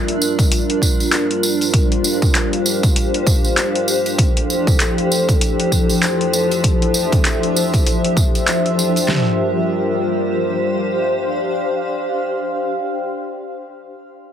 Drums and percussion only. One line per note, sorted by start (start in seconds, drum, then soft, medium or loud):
0.08 closed hi-hat soft
0.22 tambourine medium
0.39 kick loud
0.39 closed hi-hat soft
0.39 tambourine soft
0.52 closed hi-hat medium
0.52 tambourine soft
0.70 closed hi-hat soft
0.82 kick medium
0.82 tambourine medium
1.00 tambourine soft
1.12 clap loud
1.12 closed hi-hat medium
1.12 tambourine soft
1.31 closed hi-hat soft
1.43 tambourine medium
1.61 closed hi-hat soft
1.61 tambourine soft
1.74 kick loud
1.74 closed hi-hat medium
1.74 tambourine soft
1.92 closed hi-hat soft
2.04 tambourine medium
2.22 kick loud
2.22 tambourine soft
2.35 clap loud
2.35 closed hi-hat medium
2.35 tambourine soft
2.53 closed hi-hat soft
2.66 tambourine medium
2.83 kick loud
2.83 closed hi-hat soft
2.83 tambourine medium
2.96 closed hi-hat medium
2.96 tambourine soft
3.14 closed hi-hat soft
3.27 kick loud
3.27 tambourine medium
3.44 tambourine soft
3.58 clap loud
3.58 closed hi-hat medium
3.58 tambourine soft
3.75 closed hi-hat soft
3.88 tambourine medium
4.06 closed hi-hat soft
4.06 tambourine soft
4.18 kick loud
4.18 closed hi-hat medium
4.18 tambourine soft
4.37 closed hi-hat medium
4.50 tambourine medium
4.67 kick loud
4.67 tambourine soft
4.80 clap loud
4.80 closed hi-hat medium
4.80 tambourine soft
4.98 closed hi-hat medium
5.12 tambourine medium
5.29 kick medium
5.29 closed hi-hat soft
5.29 tambourine soft
5.41 closed hi-hat medium
5.41 tambourine soft
5.60 closed hi-hat soft
5.72 kick medium
5.72 tambourine medium
5.89 tambourine soft
6.03 clap loud
6.03 closed hi-hat medium
6.03 tambourine soft
6.21 closed hi-hat soft
6.33 tambourine medium
6.51 closed hi-hat soft
6.51 tambourine soft
6.64 kick loud
6.64 closed hi-hat medium
6.64 tambourine soft
6.82 closed hi-hat medium
6.94 tambourine medium
7.12 kick loud
7.12 closed hi-hat soft
7.12 tambourine soft
7.25 clap loud
7.25 closed hi-hat medium
7.25 tambourine soft
7.43 closed hi-hat medium
7.56 tambourine medium
7.74 kick loud
7.74 closed hi-hat soft
7.74 tambourine soft
7.87 closed hi-hat medium
7.87 tambourine soft
8.04 closed hi-hat soft
8.17 kick loud
8.17 tambourine medium
8.35 closed hi-hat soft
8.35 tambourine soft
8.47 clap loud
8.47 closed hi-hat medium
8.47 tambourine soft
8.66 closed hi-hat soft
8.79 tambourine medium
8.96 closed hi-hat soft
8.96 tambourine medium
9.08 snare medium
9.08 clap medium
9.08 floor tom loud